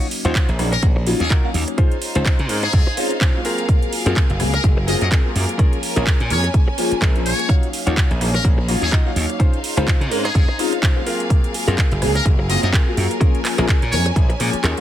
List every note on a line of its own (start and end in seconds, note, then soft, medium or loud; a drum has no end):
0.00 0.22 F#3 medium
0.00 0.22 A#3 medium
0.00 0.22 C#4 medium
0.00 1.76 C#4 medium
0.00 0.22 D#4 medium
0.00 0.22 F5 medium
0.00 closed hi-hat soft
0.11 open hi-hat loud
0.25 0.32 D#2 loud
0.25 0.31 F#3 medium
0.25 0.31 A#3 medium
0.25 0.31 C#4 medium
0.25 0.31 D#4 medium
0.25 0.49 D#4 medium
0.25 0.49 F4 medium
0.25 0.31 F4 medium
0.25 0.49 F#4 medium
0.25 0.49 C5 loud
0.25 closed hi-hat medium
0.35 kick loud
0.35 clap loud
0.35 closed hi-hat medium
0.49 0.56 A#1 medium
0.49 closed hi-hat soft
0.59 0.76 A#1 medium
0.59 0.67 F#3 medium
0.59 0.67 A#3 medium
0.59 0.67 C#4 medium
0.59 0.67 D#4 medium
0.59 0.67 G#4 loud
0.59 cross-stick medium
0.59 open hi-hat medium
0.72 0.83 A#4 medium
0.72 muted clean electric guitar stroke medium
0.72 closed hi-hat medium
0.83 1.13 A#1 loud
0.83 0.91 F#3 medium
0.83 0.91 A#3 medium
0.83 0.91 C#4 medium
0.83 0.91 D#4 medium
0.83 0.91 F#4 medium
0.83 muted clean electric guitar stroke soft
0.83 kick loud
0.83 closed hi-hat medium
0.96 muted clean electric guitar stroke loud
1.07 1.19 F#3 loud
1.07 1.19 A#3 loud
1.07 1.19 C#4 medium
1.07 1.19 D#4 medium
1.07 1.19 F4 loud
1.07 muted clean electric guitar stroke soft
1.07 open hi-hat loud
1.20 1.27 D#2 medium
1.20 1.31 G#4 medium
1.20 muted clean electric guitar stroke soft
1.20 closed hi-hat medium
1.30 1.49 D#4 medium
1.30 1.49 F4 medium
1.30 1.49 F#4 medium
1.30 1.49 A#4 medium
1.30 kick loud
1.30 clap loud
1.30 closed hi-hat medium
1.44 1.76 F#3 medium
1.44 1.76 A#3 medium
1.44 1.76 C#4 medium
1.44 1.76 D#4 medium
1.44 1.76 F5 medium
1.54 1.63 D#2 medium
1.54 open hi-hat medium
1.68 muted clean electric guitar stroke soft
1.68 closed hi-hat medium
1.78 2.12 G#3 medium
1.78 1.97 C#4 loud
1.78 2.12 C#4 medium
1.78 3.43 D#4 medium
1.78 1.97 D#4 loud
1.78 2.12 D#4 medium
1.78 2.13 F4 medium
1.78 1.97 F4 loud
1.78 3.43 C5 medium
1.78 2.12 C5 medium
1.78 1.97 C5 loud
1.78 5.55 F5 loud
1.78 kick loud
1.78 closed hi-hat medium
1.92 closed hi-hat soft
2.02 open hi-hat loud
2.15 2.22 C#2 loud
2.15 2.21 G#3 medium
2.15 2.21 C4 medium
2.15 2.21 C#4 medium
2.15 2.39 C#4 medium
2.15 2.39 D#4 medium
2.15 2.22 D#4 medium
2.15 2.39 F4 medium
2.15 2.22 F4 medium
2.15 2.40 C5 loud
2.15 closed hi-hat medium
2.26 kick loud
2.26 clap loud
2.26 closed hi-hat medium
2.39 2.49 C#3 medium
2.39 closed hi-hat soft
2.49 2.66 G#2 loud
2.49 2.57 G#3 medium
2.49 2.57 C4 medium
2.49 2.57 C#4 medium
2.49 2.57 D#4 medium
2.49 2.57 A#4 loud
2.49 open hi-hat loud
2.63 2.97 G#4 medium
2.63 muted clean electric guitar stroke medium
2.63 closed hi-hat medium
2.73 2.82 F2 loud
2.73 2.81 G#3 medium
2.73 2.81 C4 medium
2.73 2.81 C#4 medium
2.73 2.81 D#4 medium
2.73 2.81 G#4 medium
2.73 muted clean electric guitar stroke soft
2.73 kick loud
2.73 closed hi-hat medium
2.87 muted clean electric guitar stroke loud
2.97 3.09 G#3 loud
2.97 3.09 C4 loud
2.97 3.09 C#4 loud
2.97 3.10 D#4 medium
2.97 3.10 F4 loud
2.97 muted clean electric guitar stroke soft
2.97 open hi-hat loud
3.11 muted clean electric guitar stroke soft
3.11 closed hi-hat medium
3.21 3.40 C#4 medium
3.21 3.40 D#4 medium
3.21 3.40 F4 medium
3.21 3.40 C5 loud
3.21 kick loud
3.21 clap loud
3.21 closed hi-hat medium
3.34 3.66 F#3 medium
3.34 3.66 G#3 medium
3.34 3.66 A#3 medium
3.34 3.66 C4 medium
3.34 3.66 F4 medium
3.45 3.93 C4 medium
3.45 3.93 F4 medium
3.45 5.57 G#4 medium
3.45 3.93 G#4 medium
3.45 7.46 A#4 medium
3.45 3.93 A#4 loud
3.45 open hi-hat medium
3.58 closed hi-hat medium
3.69 4.03 F4 medium
3.69 kick loud
3.69 closed hi-hat medium
3.82 closed hi-hat soft
3.93 open hi-hat loud
4.05 4.13 F#2 loud
4.05 4.12 F#3 medium
4.05 4.12 G#3 medium
4.05 4.12 A#3 medium
4.05 4.12 C4 medium
4.05 4.30 C4 medium
4.05 4.12 F4 medium
4.05 4.30 F4 medium
4.05 4.30 G#4 medium
4.05 4.30 A#4 loud
4.05 closed hi-hat medium
4.16 kick loud
4.16 clap loud
4.16 closed hi-hat medium
4.30 4.42 F#1 medium
4.30 closed hi-hat soft
4.40 4.57 C#2 loud
4.40 4.48 F#3 medium
4.40 4.48 G#3 medium
4.40 4.48 A#3 medium
4.40 4.48 C4 medium
4.40 4.48 G#4 loud
4.40 cross-stick medium
4.40 open hi-hat loud
4.54 4.64 A#4 medium
4.54 muted clean electric guitar stroke medium
4.54 closed hi-hat medium
4.63 4.94 F#1 loud
4.63 4.71 F#3 medium
4.63 4.71 G#3 medium
4.63 4.72 A#3 medium
4.63 4.72 C4 medium
4.63 4.72 F#4 medium
4.63 kick loud
4.63 closed hi-hat medium
4.77 muted clean electric guitar stroke loud
4.87 5.00 F#3 loud
4.87 5.00 G#3 medium
4.87 5.00 A#3 medium
4.87 5.00 C4 loud
4.87 5.00 F4 loud
4.87 4.96 D#5 medium
4.87 muted clean electric guitar stroke soft
4.87 open hi-hat loud
5.01 5.08 F#2 medium
5.01 5.08 D#5 medium
5.01 muted clean electric guitar stroke soft
5.01 closed hi-hat soft
5.11 5.30 C4 medium
5.11 5.30 F4 medium
5.11 5.30 G#4 medium
5.11 5.30 A#4 medium
5.11 kick loud
5.11 clap loud
5.11 closed hi-hat medium
5.25 5.56 F#3 medium
5.25 5.57 G#3 medium
5.25 5.57 A#3 medium
5.25 5.57 C4 medium
5.25 5.57 F4 medium
5.36 5.44 F#2 medium
5.36 open hi-hat medium
5.49 muted clean electric guitar stroke soft
5.49 closed hi-hat medium
5.59 5.93 A#3 medium
5.59 5.78 C#4 loud
5.59 5.93 C#4 medium
5.59 7.48 C#4 medium
5.59 5.78 F4 loud
5.59 5.94 F4 medium
5.59 5.78 G#4 loud
5.59 5.78 A#4 loud
5.59 7.48 G#5 medium
5.59 kick loud
5.59 closed hi-hat medium
5.73 closed hi-hat soft
5.83 open hi-hat loud
5.96 6.03 A#1 loud
5.96 6.02 F3 medium
5.96 6.02 G#3 medium
5.96 6.02 A#3 medium
5.96 6.20 C#4 medium
5.96 6.02 C#4 medium
5.96 6.20 F4 medium
5.96 6.03 F4 medium
5.96 6.20 G#4 medium
5.96 6.20 A#4 loud
5.96 closed hi-hat medium
6.07 kick loud
6.07 clap loud
6.07 closed hi-hat medium
6.20 6.32 A#2 medium
6.20 closed hi-hat soft
6.30 6.47 F2 loud
6.30 6.38 F3 medium
6.30 6.38 G#3 medium
6.30 6.38 A#3 medium
6.30 6.38 C#4 medium
6.30 6.38 A#4 loud
6.30 6.45 C#5 medium
6.30 open hi-hat loud
6.44 muted clean electric guitar stroke medium
6.44 closed hi-hat soft
6.54 6.62 F3 medium
6.54 6.62 G#3 medium
6.54 6.62 A#3 medium
6.54 6.62 C#4 medium
6.54 6.62 G#4 medium
6.54 muted clean electric guitar stroke soft
6.54 kick loud
6.54 closed hi-hat medium
6.68 muted clean electric guitar stroke loud
6.78 6.90 F3 loud
6.78 6.90 G#3 medium
6.78 6.90 A#3 loud
6.78 6.90 C#4 medium
6.78 6.91 F4 loud
6.78 muted clean electric guitar stroke soft
6.78 open hi-hat loud
6.91 muted clean electric guitar stroke soft
6.91 muted slap bass stroke soft
6.91 closed hi-hat soft
7.01 7.32 A#1 medium
7.01 7.20 C#4 medium
7.01 7.20 F4 medium
7.01 7.21 G#4 medium
7.01 7.21 A#4 medium
7.01 kick loud
7.01 clap loud
7.01 closed hi-hat medium
7.15 7.47 F3 medium
7.15 7.47 G#3 medium
7.15 7.47 A#3 medium
7.15 7.47 C#4 medium
7.15 7.47 F4 medium
7.15 closed hi-hat soft
7.26 7.55 C#5 medium
7.26 open hi-hat medium
7.39 muted clean electric guitar stroke soft
7.39 closed hi-hat medium
7.49 7.83 F#3 medium
7.49 7.84 A#3 medium
7.49 7.84 C#4 medium
7.49 9.38 C#4 medium
7.49 7.68 D#4 loud
7.49 7.84 D#4 medium
7.49 7.68 F4 loud
7.49 7.68 F#4 medium
7.49 7.68 C#5 loud
7.49 13.17 F5 medium
7.49 7.84 F5 medium
7.49 kick loud
7.49 closed hi-hat medium
7.63 closed hi-hat soft
7.73 open hi-hat loud
7.86 7.94 D#2 loud
7.86 7.92 F#3 medium
7.86 7.93 A#3 medium
7.86 7.93 C#4 medium
7.86 7.93 D#4 medium
7.86 8.11 D#4 medium
7.86 8.11 F4 medium
7.86 7.93 F4 medium
7.86 8.11 F#4 medium
7.86 8.11 C#5 medium
7.86 closed hi-hat medium
7.97 kick loud
7.97 clap loud
7.97 closed hi-hat medium
8.11 8.17 A#1 medium
8.11 closed hi-hat soft
8.21 8.38 A#1 loud
8.21 8.28 F#3 medium
8.21 8.29 A#3 medium
8.21 8.29 C#4 medium
8.21 8.29 D#4 medium
8.21 8.29 G#4 loud
8.21 cross-stick medium
8.21 open hi-hat medium
8.34 8.45 A#4 medium
8.34 muted clean electric guitar stroke medium
8.34 closed hi-hat soft
8.44 8.75 A#1 loud
8.44 8.52 F#3 medium
8.44 8.52 A#3 medium
8.44 8.52 C#4 medium
8.44 8.52 D#4 medium
8.44 8.53 F#4 medium
8.44 muted clean electric guitar stroke soft
8.44 kick loud
8.44 closed hi-hat medium
8.58 muted clean electric guitar stroke loud
8.68 8.81 F#3 loud
8.68 8.81 A#3 loud
8.68 8.81 C#4 loud
8.68 8.81 D#4 medium
8.68 8.81 F4 loud
8.68 muted clean electric guitar stroke soft
8.68 open hi-hat loud
8.82 8.89 D#2 medium
8.82 8.93 G#4 loud
8.82 muted clean electric guitar stroke soft
8.82 closed hi-hat soft
8.92 9.11 D#4 medium
8.92 9.11 F4 medium
8.92 9.11 F#4 medium
8.92 9.11 D#5 loud
8.92 kick loud
8.92 clap loud
8.92 closed hi-hat medium
9.06 9.37 F#3 medium
9.06 9.37 A#3 medium
9.06 9.38 C#4 medium
9.06 9.38 D#4 medium
9.06 9.38 F5 medium
9.16 9.25 D#2 medium
9.16 open hi-hat medium
9.30 muted clean electric guitar stroke soft
9.30 closed hi-hat soft
9.39 9.74 G#3 medium
9.39 9.59 C#4 loud
9.39 9.74 C#4 medium
9.39 11.05 D#4 medium
9.39 9.74 D#4 medium
9.39 9.59 D#4 medium
9.39 9.59 F4 loud
9.39 9.74 F4 medium
9.39 9.74 C5 medium
9.39 11.05 C5 medium
9.39 9.59 C5 loud
9.39 kick loud
9.39 closed hi-hat medium
9.54 closed hi-hat soft
9.64 open hi-hat loud
9.77 9.84 C#2 loud
9.77 9.83 G#3 medium
9.77 9.83 C4 medium
9.77 10.01 C#4 medium
9.77 9.83 C#4 medium
9.77 9.83 D#4 medium
9.77 10.01 D#4 medium
9.77 10.01 F4 medium
9.77 9.83 F4 medium
9.77 10.01 C5 medium
9.77 closed hi-hat medium
9.87 kick loud
9.87 clap loud
9.87 closed hi-hat medium
10.01 10.11 C#3 medium
10.01 closed hi-hat soft
10.11 10.28 G#2 loud
10.11 10.19 G#3 loud
10.11 10.19 C4 medium
10.11 10.19 C#4 medium
10.11 10.19 D#4 medium
10.11 10.19 A#4 loud
10.11 open hi-hat medium
10.25 10.59 G#4 medium
10.25 muted clean electric guitar stroke medium
10.25 closed hi-hat soft
10.35 10.44 F2 medium
10.35 10.43 G#3 medium
10.35 10.43 C4 medium
10.35 10.43 C#4 medium
10.35 10.43 D#4 medium
10.35 10.43 G#4 medium
10.35 muted clean electric guitar stroke soft
10.35 kick loud
10.35 closed hi-hat medium
10.48 muted clean electric guitar stroke loud
10.59 10.71 G#3 loud
10.59 10.71 C4 medium
10.59 10.71 C#4 loud
10.59 10.71 D#4 medium
10.59 10.72 F4 loud
10.59 muted clean electric guitar stroke soft
10.59 open hi-hat loud
10.72 muted clean electric guitar stroke soft
10.72 closed hi-hat soft
10.82 11.01 C#4 medium
10.82 11.01 D#4 medium
10.82 11.02 F4 medium
10.82 11.02 C5 loud
10.82 kick loud
10.82 clap loud
10.82 closed hi-hat medium
10.96 11.28 F#3 medium
10.96 11.28 G#3 medium
10.96 11.28 A#3 medium
10.96 11.28 C4 medium
10.96 11.28 F4 medium
11.06 11.54 C4 medium
11.06 11.54 F4 medium
11.06 11.54 G#4 medium
11.06 13.19 G#4 medium
11.06 14.80 A#4 medium
11.06 11.54 A#4 loud
11.06 open hi-hat medium
11.20 closed hi-hat medium
11.30 11.64 F#3 medium
11.30 11.65 G#3 medium
11.30 11.65 A#3 medium
11.30 11.65 C4 medium
11.30 11.65 F4 medium
11.30 kick loud
11.30 closed hi-hat medium
11.44 closed hi-hat soft
11.54 open hi-hat loud
11.68 11.75 F#2 loud
11.68 11.74 F#3 medium
11.68 11.74 G#3 medium
11.68 11.74 A#3 medium
11.68 11.91 C4 medium
11.68 11.74 C4 medium
11.68 11.92 F4 medium
11.68 11.74 F4 medium
11.68 11.92 G#4 medium
11.68 11.92 A#4 loud
11.68 closed hi-hat medium
11.78 kick loud
11.78 clap loud
11.78 closed hi-hat medium
11.91 12.04 F#1 medium
11.91 closed hi-hat soft
12.02 12.19 C#2 loud
12.02 12.09 F#3 medium
12.02 12.10 G#3 medium
12.02 12.10 A#3 medium
12.02 12.10 C4 medium
12.02 12.10 G#4 loud
12.02 cross-stick medium
12.02 open hi-hat loud
12.15 12.26 A#4 loud
12.15 muted clean electric guitar stroke medium
12.15 closed hi-hat medium
12.26 12.56 F#1 loud
12.26 12.33 F#3 medium
12.26 12.33 G#3 medium
12.26 12.34 A#3 medium
12.26 12.34 C4 medium
12.26 12.34 F#4 medium
12.26 muted clean electric guitar stroke soft
12.26 kick loud
12.26 closed hi-hat medium
12.39 muted clean electric guitar stroke loud
12.49 12.62 F#3 loud
12.49 12.62 G#3 loud
12.49 12.62 A#3 loud
12.49 12.62 C4 loud
12.49 12.62 F4 loud
12.49 12.58 D#5 loud
12.49 muted clean electric guitar stroke soft
12.49 open hi-hat loud
12.63 12.70 F#2 medium
12.63 12.70 D#5 medium
12.63 muted clean electric guitar stroke soft
12.63 closed hi-hat medium
12.73 12.92 C4 medium
12.73 12.92 F4 medium
12.73 12.92 G#4 medium
12.73 12.92 A#4 loud
12.73 kick loud
12.73 clap loud
12.73 closed hi-hat medium
12.87 13.18 F#3 medium
12.87 13.19 G#3 medium
12.87 13.19 A#3 medium
12.87 13.19 F4 medium
12.97 13.06 F#2 medium
12.97 open hi-hat medium
13.10 muted clean electric guitar stroke soft
13.10 closed hi-hat medium
13.21 13.55 F3 medium
13.21 13.55 G#3 medium
13.21 13.55 A#3 medium
13.21 13.40 C#4 loud
13.21 14.80 C#4 medium
13.21 13.55 C#4 medium
13.21 13.40 F4 loud
13.21 13.56 F4 medium
13.21 13.40 G#4 loud
13.21 13.40 A#4 loud
13.21 14.80 G#5 loud
13.21 kick loud
13.21 closed hi-hat medium
13.35 closed hi-hat soft
13.45 cross-stick medium
13.45 clap medium
13.45 open hi-hat loud
13.58 13.65 A#1 loud
13.58 13.64 F3 medium
13.58 13.64 G#3 medium
13.58 13.64 A#3 medium
13.58 13.82 C#4 medium
13.58 13.64 C#4 medium
13.58 13.82 F4 medium
13.58 13.64 F4 medium
13.58 13.82 G#4 medium
13.58 13.82 A#4 loud
13.58 closed hi-hat medium
13.68 kick loud
13.68 clap loud
13.68 closed hi-hat medium
13.82 13.94 A#2 medium
13.82 closed hi-hat soft
13.92 14.09 F2 loud
13.92 14.00 F3 loud
13.92 14.00 G#3 medium
13.92 14.00 A#3 medium
13.92 14.00 C#4 medium
13.92 14.00 A#4 loud
13.92 14.06 C#5 loud
13.92 open hi-hat loud
14.06 muted clean electric guitar stroke medium
14.06 closed hi-hat medium
14.16 14.33 A#1 medium
14.16 14.24 F3 medium
14.16 14.24 G#3 medium
14.16 14.24 A#3 medium
14.16 14.24 C#4 medium
14.16 14.24 G#4 medium
14.16 muted clean electric guitar stroke soft
14.16 kick loud
14.16 closed hi-hat medium
14.30 muted clean electric guitar stroke loud
14.30 closed hi-hat soft
14.40 14.49 A#2 medium
14.40 14.52 F3 loud
14.40 14.52 G#3 loud
14.40 14.52 A#3 loud
14.40 14.52 C#4 loud
14.40 14.52 F4 loud
14.40 muted clean electric guitar stroke soft
14.40 open hi-hat loud
14.53 muted clean electric guitar stroke soft
14.53 muted slap bass stroke soft
14.53 closed hi-hat medium
14.64 14.73 D#2 loud
14.64 14.80 C#4 medium
14.64 14.80 F4 medium
14.64 14.80 G#4 medium
14.64 14.80 A#4 medium
14.64 clap loud
14.64 closed hi-hat medium
14.77 14.80 F3 medium
14.77 14.80 G#3 medium
14.77 14.80 A#3 medium